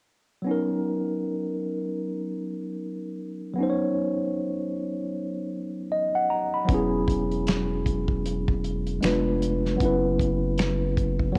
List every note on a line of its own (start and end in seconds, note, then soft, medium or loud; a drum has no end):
0.42 3.51 F#3 medium
0.42 3.52 B3 medium
0.47 3.54 C#4 soft
0.47 3.55 D#4 soft
0.51 3.56 A#4 medium
3.54 5.85 F#3 medium
3.54 5.86 B3 medium
3.58 5.87 C#4 medium
3.58 5.88 D#4 medium
3.63 3.68 C5 medium
3.70 5.93 C#5 medium
5.92 6.13 D#5 medium
6.15 6.30 F#5 medium
6.30 6.52 A#5 medium
6.54 6.90 B5 soft
6.65 8.96 F#3 medium
6.65 8.98 B3 medium
6.65 kick loud
6.69 8.99 E1 medium
6.69 8.99 C#4 medium
6.69 9.00 E4 soft
6.69 closed hi-hat medium
6.74 9.01 G#4 medium
7.08 kick medium
7.08 closed hi-hat soft
7.31 closed hi-hat soft
7.47 finger snap medium
7.47 snare medium
7.47 closed hi-hat medium
7.86 kick medium
7.86 closed hi-hat medium
8.08 kick medium
8.26 closed hi-hat medium
8.48 kick medium
8.64 closed hi-hat soft
8.87 closed hi-hat soft
9.01 9.77 F1 medium
9.01 9.79 G#3 medium
9.01 9.77 B3 soft
9.01 9.81 D4 medium
9.01 9.81 F4 medium
9.01 finger snap medium
9.01 snare loud
9.01 closed hi-hat medium
9.05 9.82 B4 medium
9.42 closed hi-hat medium
9.65 snare soft
9.76 11.31 F#3 medium
9.76 11.32 B3 medium
9.80 11.32 F#1 medium
9.80 11.33 C#4 medium
9.80 11.34 E4 medium
9.80 kick medium
9.80 closed hi-hat medium
9.85 11.36 B4 medium
10.19 kick medium
10.19 closed hi-hat medium
10.58 finger snap medium
10.58 snare loud
10.58 closed hi-hat medium
10.97 kick medium
10.97 closed hi-hat medium
11.19 kick medium
11.32 11.38 F#3 medium
11.32 11.38 B3 medium